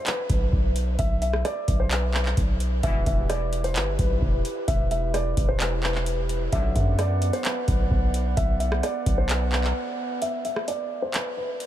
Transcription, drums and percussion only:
0.06 clap loud
0.06 closed hi-hat medium
0.30 kick loud
0.30 closed hi-hat medium
0.53 kick medium
0.76 closed hi-hat medium
0.99 kick loud
0.99 closed hi-hat medium
1.22 closed hi-hat medium
1.33 cross-stick medium
1.45 cross-stick medium
1.45 closed hi-hat medium
1.68 kick loud
1.68 closed hi-hat medium
1.91 clap loud
1.91 closed hi-hat medium
2.14 clap loud
2.26 clap medium
2.37 kick medium
2.37 closed hi-hat medium
2.60 closed hi-hat medium
2.83 kick loud
2.83 closed hi-hat medium
3.06 kick loud
3.06 closed hi-hat medium
3.30 cross-stick medium
3.30 closed hi-hat medium
3.53 closed hi-hat medium
3.64 closed hi-hat medium
3.76 clap loud
3.76 closed hi-hat medium
3.99 kick loud
3.99 closed hi-hat medium
4.22 kick medium
4.45 closed hi-hat medium
4.68 kick loud
4.68 closed hi-hat medium
4.91 closed hi-hat medium
5.14 cross-stick medium
5.14 closed hi-hat medium
5.37 kick loud
5.37 closed hi-hat medium
5.60 clap loud
5.60 closed hi-hat medium
5.83 clap loud
5.95 clap medium
6.06 closed hi-hat medium
6.29 closed hi-hat medium
6.53 kick loud
6.53 closed hi-hat medium
6.76 kick loud
6.76 closed hi-hat medium
6.99 cross-stick medium
6.99 closed hi-hat medium
7.22 closed hi-hat medium
7.33 closed hi-hat medium
7.45 clap loud
7.45 closed hi-hat medium
7.68 kick loud
7.68 closed hi-hat medium
7.91 kick loud
8.14 closed hi-hat medium
8.37 kick loud
8.37 closed hi-hat medium
8.60 closed hi-hat medium
8.72 cross-stick loud
8.83 cross-stick medium
8.83 closed hi-hat medium
9.06 kick loud
9.06 closed hi-hat medium
9.29 clap loud
9.29 closed hi-hat medium
9.52 clap loud
9.64 clap medium
10.22 closed hi-hat medium
10.45 closed hi-hat medium
10.56 cross-stick medium
10.68 closed hi-hat medium
11.14 clap loud
11.14 closed hi-hat medium
11.60 closed hi-hat medium

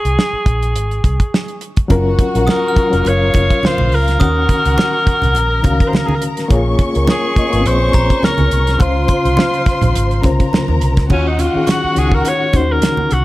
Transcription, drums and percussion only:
0.05 closed hi-hat medium
0.19 snare loud
0.46 kick loud
0.46 closed hi-hat medium
0.62 closed hi-hat medium
0.76 closed hi-hat medium
0.91 closed hi-hat soft
1.04 kick medium
1.04 closed hi-hat medium
1.20 kick medium
1.20 closed hi-hat soft
1.34 snare loud
1.48 closed hi-hat soft
1.61 closed hi-hat medium
1.77 kick medium
1.77 closed hi-hat medium
1.90 kick loud
1.90 closed hi-hat medium
1.90 muted conga soft
2.19 kick medium
2.19 closed hi-hat medium
2.19 muted conga soft
2.35 closed hi-hat medium
2.47 snare loud
2.47 high conga medium
2.76 kick loud
2.76 closed hi-hat medium
2.93 closed hi-hat soft
3.05 closed hi-hat medium
3.05 muted conga soft
3.34 kick medium
3.34 closed hi-hat medium
3.34 muted conga medium
3.50 kick medium
3.50 closed hi-hat soft
3.63 snare loud
3.63 high conga medium
3.78 high conga medium
3.92 open hi-hat medium
4.08 snare soft
4.08 closed hi-hat soft
4.20 kick loud
4.20 closed hi-hat medium
4.20 muted conga soft
4.49 kick medium
4.49 closed hi-hat medium
4.49 muted conga soft
4.65 closed hi-hat medium
4.78 snare loud
4.78 high conga medium
5.07 kick medium
5.07 closed hi-hat medium
5.22 closed hi-hat soft
5.22 low conga medium
5.35 closed hi-hat medium
5.35 muted conga soft
5.64 kick medium
5.64 closed hi-hat medium
5.64 muted conga medium
5.80 kick medium
5.80 closed hi-hat soft
5.93 snare loud
5.93 high conga medium
6.08 high conga medium
6.22 closed hi-hat medium
6.37 snare soft
6.37 closed hi-hat medium
6.50 kick loud
6.50 closed hi-hat medium
6.50 muted conga soft
6.79 kick medium
6.79 closed hi-hat medium
6.79 muted conga medium
6.95 closed hi-hat medium
7.07 snare loud
7.07 high conga medium
7.36 kick loud
7.36 closed hi-hat medium
7.53 closed hi-hat medium
7.66 closed hi-hat medium
7.93 kick medium
7.93 closed hi-hat medium
7.93 muted conga medium
8.10 kick medium
8.10 closed hi-hat soft
8.23 snare loud
8.23 high conga medium
8.38 closed hi-hat soft
8.38 high conga medium
8.51 closed hi-hat medium
8.67 snare soft
8.67 closed hi-hat medium
8.80 kick loud
8.80 closed hi-hat medium
8.80 muted conga soft
9.08 kick medium
9.08 closed hi-hat medium
9.08 muted conga soft
9.25 closed hi-hat medium
9.37 snare loud
9.37 high conga medium
9.54 closed hi-hat soft
9.66 kick medium
9.66 snare soft
9.66 closed hi-hat medium
9.82 closed hi-hat soft
9.82 low conga medium
9.95 closed hi-hat medium
10.11 closed hi-hat soft
10.23 kick medium
10.23 closed hi-hat medium
10.23 muted conga medium
10.40 kick medium
10.40 closed hi-hat soft
10.53 snare loud
10.53 high conga medium
10.68 high conga medium
10.81 closed hi-hat medium
10.97 kick medium
10.97 snare soft
10.97 closed hi-hat soft
11.10 kick loud
11.10 crash medium
11.10 muted conga soft
11.39 closed hi-hat medium
11.39 muted conga soft
11.67 snare loud
11.67 closed hi-hat medium
11.67 high conga medium
11.96 closed hi-hat medium
12.12 kick medium
12.25 closed hi-hat medium
12.25 muted conga soft
12.53 kick medium
12.53 closed hi-hat medium
12.53 muted conga medium
12.82 snare loud
12.82 closed hi-hat medium
12.82 high conga medium
12.97 high conga medium
13.11 closed hi-hat medium

